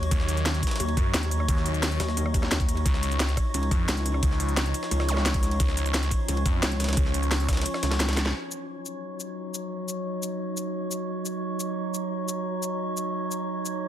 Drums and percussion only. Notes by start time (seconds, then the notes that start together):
0.03 ride
0.11 kick, closed hi-hat, ride
0.20 snare
0.28 closed hi-hat, ride
0.37 closed hi-hat
0.46 snare, closed hi-hat, ride
0.54 snare, closed hi-hat
0.63 kick, closed hi-hat, ride
0.67 snare, ride
0.71 snare, ride
0.76 snare, ride
0.80 closed hi-hat, ride
0.89 ride
0.97 kick, closed hi-hat, ride
1.14 snare, closed hi-hat, ride
1.23 closed hi-hat
1.31 closed hi-hat, ride
1.40 cross-stick
1.48 kick, closed hi-hat, ride
1.57 snare
1.66 closed hi-hat, ride
1.74 closed hi-hat
1.83 snare, closed hi-hat, open hi-hat
1.91 closed hi-hat
2.00 cross-stick, snare, closed hi-hat, ride
2.09 snare
2.17 closed hi-hat, ride
2.26 cross-stick
2.34 kick, closed hi-hat, ride
2.43 cross-stick, snare, ride
2.51 snare, closed hi-hat, ride
2.60 kick, closed hi-hat
2.69 closed hi-hat, ride
2.77 ride
2.86 kick, closed hi-hat, ride
2.94 snare
3.03 closed hi-hat, ride
3.12 closed hi-hat
3.20 snare, closed hi-hat, ride
3.29 snare, closed hi-hat
3.37 kick, cross-stick, closed hi-hat, ride
3.54 closed hi-hat, ride
3.63 ride
3.71 kick, closed hi-hat, ride
3.88 snare, closed hi-hat, ride
3.97 closed hi-hat
4.06 closed hi-hat, ride
4.14 cross-stick
4.23 kick, closed hi-hat, ride
4.31 snare
4.40 closed hi-hat, ride
4.49 closed hi-hat
4.57 snare, closed hi-hat, open hi-hat
4.66 closed hi-hat
4.74 closed hi-hat, ride
4.83 snare
4.91 closed hi-hat, ride
5.00 cross-stick, snare
5.09 closed hi-hat, ride
5.17 cross-stick, snare
5.26 snare, closed hi-hat, ride
5.34 kick, closed hi-hat, ride
5.43 snare, closed hi-hat
5.51 ride
5.60 kick, closed hi-hat, ride
5.69 snare
5.77 closed hi-hat, ride
5.86 closed hi-hat
5.94 snare, closed hi-hat, ride
6.03 snare, closed hi-hat
6.11 kick, closed hi-hat, ride
6.28 closed hi-hat, ride
6.37 ride
6.46 kick, closed hi-hat, ride
6.63 snare, closed hi-hat, ride
6.71 closed hi-hat
6.80 snare, closed hi-hat, ride
6.84 snare, ride
6.89 cross-stick, snare, ride
6.93 snare, ride
6.97 kick, closed hi-hat, ride
7.06 snare
7.14 closed hi-hat, ride
7.23 closed hi-hat
7.31 snare, closed hi-hat, open hi-hat
7.40 closed hi-hat
7.49 kick, cross-stick, snare, closed hi-hat, ride
7.53 snare, ride
7.57 snare, ride
7.62 snare, ride
7.66 closed hi-hat, ride
7.74 cross-stick, snare
7.83 snare, closed hi-hat, ride
7.91 cross-stick, snare, ride
8.00 snare, closed hi-hat, ride
8.09 snare, closed hi-hat, ride
8.13 snare, ride
8.17 snare, closed hi-hat, ride
8.26 snare
8.51 cabasa
8.86 cabasa
9.20 cabasa
9.54 cabasa
9.89 cabasa
10.23 cabasa
10.57 cabasa
10.91 cabasa
11.26 cabasa
11.60 cabasa
11.94 cabasa
12.29 cabasa
12.63 cabasa
12.97 cabasa
13.31 cabasa
13.66 cabasa